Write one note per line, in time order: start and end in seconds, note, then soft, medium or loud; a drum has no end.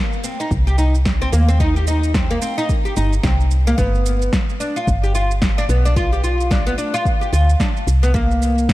0.13 shaker soft
0.24 0.39 C4 medium
0.24 shaker medium
0.40 0.50 D#4 medium
0.40 shaker soft
0.51 1.29 C2 loud
0.51 kick loud
0.51 shaker soft
0.67 0.78 G4 medium
0.67 shaker soft
0.78 0.94 D#4 medium
0.78 shaker medium
0.95 shaker soft
1.05 kick medium
1.05 snare loud
1.05 shaker soft
1.22 1.28 C4 medium
1.22 shaker soft
1.32 2.38 D#2 medium
1.32 1.48 A#3 medium
1.32 shaker medium
1.48 1.59 C4 medium
1.48 shaker soft
1.60 1.75 D#4 loud
1.60 kick medium
1.60 shaker soft
1.76 1.87 G4 medium
1.76 shaker soft
1.87 2.14 D#4 medium
1.87 shaker medium
2.04 shaker soft
2.14 2.30 C4 medium
2.14 kick loud
2.14 snare loud
2.14 shaker soft
2.31 2.37 A#3 medium
2.31 shaker soft
2.42 2.57 C4 medium
2.42 shaker medium
2.58 2.68 D#4 medium
2.58 shaker soft
2.69 kick loud
2.69 shaker soft
2.85 2.96 G4 medium
2.85 shaker soft
2.97 3.19 G1 medium
2.97 3.12 D#4 medium
2.97 shaker medium
3.13 shaker soft
3.23 3.74 C2 loud
3.23 3.33 C4 medium
3.23 kick loud
3.23 snare loud
3.23 shaker soft
3.40 shaker soft
3.51 shaker medium
3.67 3.77 A#3 medium
3.67 shaker soft
3.78 4.29 G1 medium
3.78 4.31 B3 medium
3.78 kick loud
3.78 shaker soft
3.95 shaker soft
4.06 shaker medium
4.22 shaker soft
4.33 kick loud
4.33 snare loud
4.33 shaker soft
4.50 shaker soft
4.60 4.75 D4 medium
4.60 shaker medium
4.76 4.87 F4 medium
4.76 shaker soft
4.87 5.65 G1 medium
4.87 kick loud
4.87 shaker soft
5.04 5.14 G4 medium
5.04 shaker soft
5.15 5.30 F4 medium
5.15 shaker medium
5.31 shaker soft
5.42 kick loud
5.42 snare loud
5.42 shaker soft
5.58 5.64 D4 medium
5.58 shaker soft
5.69 6.74 B1 medium
5.69 5.85 B3 medium
5.69 shaker medium
5.85 5.96 D4 medium
5.85 shaker soft
5.96 6.12 F4 medium
5.96 kick loud
5.96 shaker soft
6.13 6.23 G4 medium
6.13 shaker soft
6.24 6.50 F4 medium
6.24 shaker medium
6.41 shaker soft
6.51 6.66 D4 medium
6.51 kick loud
6.51 snare loud
6.51 shaker soft
6.67 6.73 B3 medium
6.67 shaker soft
6.78 6.93 D4 medium
6.78 shaker medium
6.94 7.05 F4 medium
6.94 shaker soft
7.05 kick loud
7.05 shaker soft
7.21 7.32 G4 medium
7.21 shaker soft
7.33 7.55 D2 medium
7.33 7.48 F4 medium
7.33 shaker medium
7.50 shaker soft
7.60 7.69 D4 medium
7.60 kick loud
7.60 snare medium
7.60 shaker soft
7.77 shaker soft
7.87 8.73 C2 medium
7.87 shaker medium
8.03 8.14 B3 medium
8.03 shaker soft
8.14 8.68 A#3 loud
8.14 kick loud
8.14 shaker soft
8.31 shaker soft
8.42 shaker medium
8.58 shaker soft
8.69 kick loud
8.69 snare loud
8.69 shaker soft